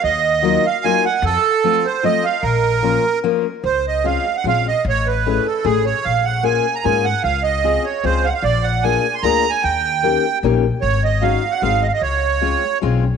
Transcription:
<<
  \new Staff \with { instrumentName = "Accordion" } { \time 3/4 \key bes \minor \tempo 4 = 150 ees''4. f''8 aes''8 ges''8 | a'4. c''8 ees''8 f''8 | bes'2 r4 | \key des \major c''8 ees''8 f''8. ges''16 f''8 ees''8 |
cis''8 ces''4 a'8 gis'8 cis''8 | f''8 ges''8 aes''8. bes''16 aes''8 ges''8 | f''8 ees''4 des''8 c''8 f''32 ges''32 f''16 | d''8 ges''8 aes''8. c'''16 \tuplet 3/2 { bes''4 aes''8 } |
g''2 r4 | des''8 ees''8 f''8. ges''16 f''8 ees''32 f''32 ees''16 | des''2 r4 | }
  \new Staff \with { instrumentName = "Steel-string acoustic guitar" } { \time 3/4 \key bes \minor r4 <ges bes ees' f'>8 r8 <ges bes ees' f'>8 r8 | r4 <f a c' f'>8 r8 <f a c' f'>8 r8 | r4 <f bes des' f'>8 r8 <f bes des' f'>8 r8 | \key des \major r4 <aes c' des' f'>8 r8 <aes c' des' f'>8 r8 |
r4 <a cis' e' gis'>8 r8 <a cis' e' gis'>8 r8 | r4 <bes des' f' aes'>8 r8 <bes des' f' aes'>8 r8 | r4 <c' des' f' aes'>8 r8 <c' des' f' aes'>8 r8 | r4 <bes d' f' aes'>8 r8 <bes d' f' aes'>8 r8 |
r4 <bes des' ees' g'>8 r8 <bes des' ees' g'>8 r8 | r4 <aes des' ees' ges'>8 r8 <aes c' ees' ges'>8 r8 | r4 <aes c' des' f'>8 r8 <aes c' des' f'>8 r8 | }
  \new Staff \with { instrumentName = "Upright bass" } { \clef bass \time 3/4 \key bes \minor ees,2 r4 | f,8 r2 r8 | bes,,2 r4 | \key des \major des,2 bes,,4 |
a,,2 a,,4 | bes,,2 aes,4 | des,2 des,4 | bes,,2 d,4 |
ees,2 bes,,4 | aes,,2 aes,,4 | des,2 ces,4 | }
>>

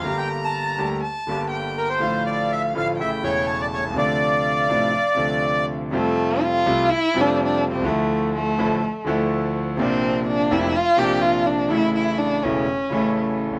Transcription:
<<
  \new Staff \with { instrumentName = "Bandoneon" } { \time 4/4 \key d \minor \tempo 4 = 123 f''16 g''8 a''4 r4. r16 bes'16 c''16~ | c''8 d''8 e''8 f''8 e''8 cis''8. d''16 cis''8 | d''2.~ d''8 r8 | r1 |
r1 | r1 | r1 | }
  \new Staff \with { instrumentName = "Violin" } { \time 4/4 \key d \minor bes''2 a''4 g''4 | f''2 g''4 a''4 | f''2.~ f''8 r8 | a4 f'4 \tuplet 3/2 { e'4 d'8~ d'16 d'8. c'8 } |
a4 a4. r4. | c'4 d'8 e'8 f'8 g'8 f'8 d'8 | e'8 e'8 d'8 cis'2 r8 | }
  \new Staff \with { instrumentName = "Grand piano" } { \clef bass \time 4/4 \key d \minor << { <g,, g, d g bes g'>4. <d, d g bes g'>8 r8 <g,, g, d g bes g'>4. | <a,, a, d f a f'>4. <a,, a, d f a f'>8 <a,, a, cis e a e'>8 <e,, e, cis e a e'>4. | <d, c d f a d'>4. <a,, a, c f a d'>8 r8 <d, c d f a d'>4. | <f, c f g a f'>4. <c, c g a f'>8 r8 <f, c f g a f'>4. |
<d, d f a e'>4. <a,, a, d f a e'>8 r8 <d, d f a e'>4. | <bes,, bes, c f bes d'>4. <f,, f, c f bes d'>8 r8 <bes,, bes, c f bes d'>4. | <a,, a, cis e a e'>4. <e,, e, cis e a e'>8 r8 <a,, a, cis e a e'>4. | } \\ { r1 | r2. r8 r32 b,,32 c,32 cis,32 | r1 | r2. r8 r32 b,,32 c,32 cis,32 |
r1 | r1 | r2. r8 r32 d,32 ees,32 r32 | } >> }
>>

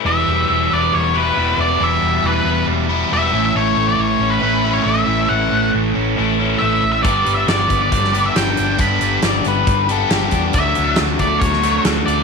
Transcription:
<<
  \new Staff \with { instrumentName = "Lead electric guitar" } { \time 4/4 \key e \dorian \tempo 4 = 137 e''4. d''8 cis''8 b'4 d''8 | e''4 b'4 r4 e''8. e''16 | cis''8. d''16 cis''8. b'4 cis''16 e''4 | fis''4 r2 e''8. e''16 |
d''8. e''16 d''8. d''4 e''16 g''4 | b''4 r2. | e''4 r8 d''8 cis''4 r8 d''8 | }
  \new Staff \with { instrumentName = "Lead electric guitar" } { \time 4/4 \key e \dorian r1 | r1 | r1 | r1 |
r1 | r4 d''8 b'4 a'8 g'8. r16 | r1 | }
  \new Staff \with { instrumentName = "Overdriven electric guitar" } { \clef bass \time 4/4 \key e \dorian <e, b, e g b e'>2~ <e, b, e g b e'>8 <e, b, e g b e'>8 <e, b, e g b e'>4 | <e, b, e g b e'>2~ <e, b, e g b e'>8 <e, b, e g b e'>8 <e, b, e g b e'>8 <a, e a cis' e'>8~ | <a, e a cis' e'>2 <a, e a cis' e'>8 <a, e a cis' e'>4 <a, e a cis' e'>8~ | <a, e a cis' e'>2 <a, e a cis' e'>8 <a, e a cis' e'>4 r8 |
<g, d g b d' g'>2~ <g, d g b d' g'>8 <g, d g b d' g'>8 <g, d g b d' g'>4 | <g, d g b d' g'>2~ <g, d g b d' g'>8 <g, d g b d' g'>8 <g, d g b d' g'>4 | <d fis a d' fis'>2~ <d fis a d' fis'>8 <d fis a d' fis'>8 <d fis a d' fis'>4 | }
  \new Staff \with { instrumentName = "Overdriven electric guitar" } { \clef bass \time 4/4 \key e \dorian e8 g8 e8 b8 g8 b8 g8 e'8 | e8 g8 e8 b8 g8 b8 g8 a,8 | a,8 a8 e8 cis'8 a8 cis'8 a8 e'8 | a,8 a8 e8 cis'8 a8 cis'8 a8 e'8 |
g,8 g8 d8 b8 g8 b8 g8 d'8 | g,8 g8 d8 b8 g8 b8 g8 d'8 | d8 fis8 d8 a8 fis8 a8 fis8 d'8 | }
  \new Staff \with { instrumentName = "Fingered electric bass" } { \clef bass \time 4/4 \key e \dorian e,,8 e,,8 e,,8 e,,8 e,,4 e,,8 e,,8 | e,,8 e,,8 e,,8 e,,8 e,,4 e,,8 a,,8 | a,,8 a,,8 a,,8 a,,8 a,,4 a,,8 a,,8 | a,,8 a,,8 a,,8 a,,8 a,,4 a,,8 a,,8 |
g,,8 g,,8 g,,8 g,,8 g,,4 g,,8 g,,8 | g,,8 g,,8 g,,8 g,,8 g,,4 g,,8 e,8 | d,8 d,8 d,8 d,8 d,4 d,8 d,8 | }
  \new DrumStaff \with { instrumentName = "Drums" } \drummode { \time 4/4 r4 r4 r4 r4 | r4 r4 r4 r4 | r4 r4 r4 r4 | r4 r4 r4 r4 |
<hh bd>8 hh8 <hh sn>8 <hh bd>8 <hh bd>16 sn16 hh8 <hh sn>8 hh8 | <hh bd>8 hh8 <hh sn>8 hh8 <hh bd>8 hh8 <hh sn>8 <hh bd>8 | <hh bd>8 hh8 <hh sn>8 <hh bd>8 <hh bd>16 sn16 <hh sn>8 <hh sn>8 hh8 | }
>>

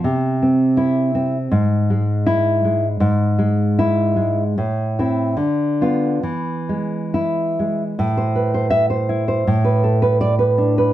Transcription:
\new Staff \with { instrumentName = "Nylon-string guitar" } { \time 2/4 \key c \major \tempo 4 = 79 << { r4 e'4 | \key e \phrygian r4 e'4 | r4 e'4 | r8 e'8 r8 f'8 |
r4 e'4 | r4 e''8 r8 | r4 d''8 r8 | } \\ { c8 c'4 c'8 | gis,8 gis4 gis8 | gis,8 gis4 gis8 | a,8 c'8 d8 b8 |
e8 gis4 gis8 | a,16 c''16 b'16 c''8 c''16 e'16 c''16 | a,16 b'16 a'16 b'8 b'16 d'16 b'16 | } >> }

